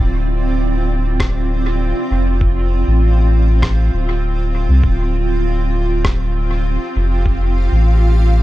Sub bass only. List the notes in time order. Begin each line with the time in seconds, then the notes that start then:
0.00 D1
2.11 F1
2.87 A1
3.93 D1
4.69 C2
4.83 D1
6.96 F1
7.72 A1